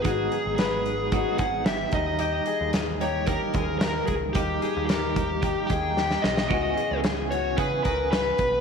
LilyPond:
<<
  \new Staff \with { instrumentName = "Lead electric guitar" } { \time 4/4 \key dis \phrygian \tempo 4 = 112 gis'4 gis'4. fis''8 e''8 dis''8 | dis''4 r8 cis''8 ais'4 ais'8 gis'8 | g'4 g'4. g''4 dis''8 | dis''4 r8 cis''8 b'8 b'8 b'4 | }
  \new Staff \with { instrumentName = "Clean electric guitar" } { \time 4/4 \key dis \phrygian fis'8 gis'8 b'4 fis'8 gis'8 g'4 | g'8 gis'8 gis'8 g'8 g'8 gis'8 ais'4 | g'8 gis'8 ais'4 g'8 gis'8 g'4 | fis'8 gis'8 gis'8 fis'8 gis'8 ais'8 b'4 | }
  \new Staff \with { instrumentName = "Clean electric guitar" } { \time 4/4 \key dis \phrygian <gis, dis fis b dis'>2 <gis, dis fis b dis'>8 <fis b dis'>4 <dis g ais dis'>8~ | <dis g ais dis'>4. <g ais dis'>8 <dis g ais dis'>2 | <dis g ais dis'>4. <g ais dis'>8 <dis g ais dis'>8 <g ais dis'>4. | <cis e b cis' gis'>2 <cis e b cis' gis'>8 <b cis' gis'>4. | }
  \new Staff \with { instrumentName = "Picked electric bass" } { \clef bass \time 4/4 \key dis \phrygian gis,,8 r16 gis,,4. r16 gis,,4 dis,8~ | dis,8 r16 dis,4. r16 dis,4 cis,8 | dis,8 r16 dis,4. r16 dis,4 b,,8 | cis,8 r16 cis,4~ cis,16 cis8 cis,4 b,,8 | }
  \new DrumStaff \with { instrumentName = "Drums" } \drummode { \time 4/4 <hh bd>8 hh8 <hh sn>8 hh8 <hh bd>8 <hh bd>8 <hh sn>8 <hh bd>8 | hh8 hh8 <hh sn>8 hh8 <hh bd>8 <hh bd>8 <hh sn>8 <hh bd>8 | <hh bd>8 hh8 <hh sn>8 <hh bd>8 <hh bd>8 <hh bd>8 sn16 sn16 sn16 sn16 | <cymc bd>8 hh8 <hh sn>8 hh8 <hh bd>8 <hh bd>8 <hh sn>8 <hh bd>8 | }
>>